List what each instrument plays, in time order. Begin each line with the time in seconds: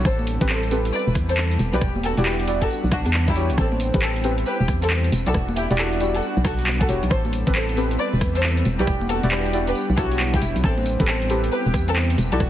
Already playing: analog synth pad G3 B3
0.05 fm bass A1, analog synth pad C4 E4, violin section A4 C5, kick, cross-stick, tambourine
0.19 tambourine, high conga
0.27 open hi-hat, tambourine
0.41 fm bass A1, synth stab C4 G4 A4 B4, kick, closed hi-hat, tambourine
0.49 violin section A4 C5, clap, tambourine
0.63 closed hi-hat, tambourine
0.71 synth stab C4 G4 A4 B4, open hi-hat, tambourine
0.85 open hi-hat, tambourine
0.93 violin section B4 D5, tambourine
1.07 fm bass E1, tambourine
1.15 fm bass E2, kick, cross-stick, open hi-hat, tambourine
1.29 violin section A4 C5, closed hi-hat, tambourine
1.37 clap, tambourine
1.51 closed hi-hat, tambourine
1.59 fm bass E1, analog synth pad B3 D4 F#5, open hi-hat, tambourine
1.73 fm bass B1, synth stab E4 F#4 G4 D5, violin section G4 B4, closed hi-hat, tambourine
1.81 fm bass E1, kick, cross-stick, tambourine
1.95 tambourine, high conga
2.03 violin section F#4 A4, open hi-hat, tambourine
2.17 fm bass E1, synth stab E4 F#4 G4 D5, closed hi-hat, tambourine
2.26 violin section G4 B4, clap, tambourine
2.40 closed hi-hat, tambourine
2.48 synth stab E4 F#4 G4 D5, open hi-hat, tambourine
2.62 violin section F#4 A4, kick, open hi-hat, tambourine
2.70 tambourine
2.84 fm bass B1, tambourine
2.92 fm bass B1, violin section D4 F#4, kick, cross-stick, open hi-hat, tambourine
3.06 fm bass E2, closed hi-hat, tambourine
3.14 clap, tambourine
3.28 violin section G3 E4, kick, closed hi-hat, tambourine
3.36 synth stab E4 F#4 G4 C#5, open hi-hat, tambourine
3.50 fm bass B1, closed hi-hat, tambourine
3.58 fm bass A1, analog synth pad C4 E4, violin section C4 A4, kick, cross-stick, tambourine
3.72 tambourine, high conga
3.80 open hi-hat, tambourine
3.94 fm bass A1, synth stab C4 G4 A4 B4, kick, closed hi-hat, tambourine
4.02 violin section C4 A4, clap, tambourine
4.16 closed hi-hat, tambourine
4.24 synth stab C4 G4 A4 B4, open hi-hat, tambourine
4.38 open hi-hat, tambourine
4.46 violin section G4 B4, tambourine
4.60 fm bass E1, tambourine
4.68 fm bass E2, kick, cross-stick, open hi-hat, tambourine
4.82 violin section C4 A4, closed hi-hat, tambourine
4.90 clap, tambourine
5.04 closed hi-hat, tambourine
5.12 fm bass E1, analog synth pad G3 B3 D4 F#5, open hi-hat, tambourine
5.26 fm bass B1, synth stab E4 F#4 G4 D5, violin section F#4 A4, closed hi-hat, tambourine
5.34 fm bass E1, kick, cross-stick, tambourine
5.48 tambourine, high conga
5.56 violin section E4 G4, open hi-hat, tambourine
5.71 fm bass E1, synth stab E4 F#4 G4 D5, closed hi-hat, tambourine
5.79 violin section F#4 A4, clap, tambourine
5.93 closed hi-hat, tambourine
6.00 synth stab E4 F#4 G4 D5, open hi-hat, tambourine
6.15 violin section F#4 A4, open hi-hat, tambourine
6.23 tambourine
6.37 fm bass B1, tambourine
6.45 fm bass B1, violin section F#4 A4, kick, cross-stick, open hi-hat, tambourine
6.59 open hi-hat, tambourine
6.67 clap, tambourine
6.81 violin section F#4 A4, kick, closed hi-hat, tambourine
6.89 fm bass E1, synth stab E4 F#4 G4 C#5, open hi-hat, tambourine
7.03 fm bass B1, closed hi-hat, tambourine
7.11 fm bass A1, analog synth pad G3 C4 E4, violin section A4 C5, kick, cross-stick, tambourine
7.25 tambourine, high conga
7.33 open hi-hat, tambourine
7.47 fm bass A1, synth stab C4 G4 A4 B4, kick, closed hi-hat, tambourine
7.55 violin section A4 C5, clap, tambourine
7.69 closed hi-hat, tambourine
7.77 synth stab C4 G4 A4 B4, open hi-hat, tambourine
7.91 open hi-hat, tambourine
7.99 violin section B4 D5, tambourine
8.13 fm bass E1, tambourine
8.21 fm bass E2, kick, cross-stick, open hi-hat, tambourine
8.35 violin section A4 C5, closed hi-hat, tambourine
8.43 clap, tambourine
8.57 closed hi-hat, tambourine
8.65 fm bass E1, analog synth pad D4 F#5, open hi-hat, tambourine
8.79 fm bass B1, synth stab E4 F#4 G4 D5, violin section G4 B4, closed hi-hat, tambourine
8.87 fm bass E1, kick, cross-stick, tambourine
9.01 tambourine, high conga
9.09 violin section F#4 A4, open hi-hat, tambourine
9.23 fm bass E1, synth stab E4 F#4 G4 D5, closed hi-hat, tambourine
9.31 violin section G4 B4, clap, tambourine
9.46 closed hi-hat, tambourine
9.53 synth stab E4 F#4 G4 D5, open hi-hat, tambourine
9.67 violin section G4 B4, open hi-hat, tambourine
9.75 tambourine
9.89 fm bass B1, tambourine
9.97 fm bass B1, synth stab E4 F#4 G4 C#5, violin section F#4 A4, kick, cross-stick, open hi-hat, tambourine
10.12 open hi-hat, tambourine
10.20 clap, tambourine
10.34 violin section E4 G4, kick, closed hi-hat, tambourine
10.42 fm bass E1, open hi-hat, tambourine
10.56 fm bass B1, closed hi-hat, tambourine
10.64 fm bass A1, violin section C4 A4, analog synth pad C4 E4, kick, cross-stick, tambourine
10.78 tambourine, high conga
10.86 open hi-hat, tambourine
11.00 fm bass A1, synth stab C4 G4 A4 B4, kick, closed hi-hat, tambourine
11.08 violin section C4 A4, clap, tambourine
11.22 closed hi-hat, tambourine
11.30 synth stab C4 G4 A4 B4, open hi-hat, tambourine
11.44 open hi-hat, tambourine
11.52 violin section G4 B4, tambourine
11.66 fm bass E1, tambourine
11.74 fm bass E2, kick, cross-stick, open hi-hat, tambourine
11.88 violin section C4 A4, closed hi-hat, tambourine
11.96 clap, tambourine
12.10 closed hi-hat, tambourine
12.18 fm bass E1, analog synth pad D4 F#5, open hi-hat, tambourine
12.32 fm bass B1, synth stab E4 F#4 G4 D5, violin section F#4 A4, closed hi-hat, tambourine
12.40 fm bass E1, kick, cross-stick, tambourine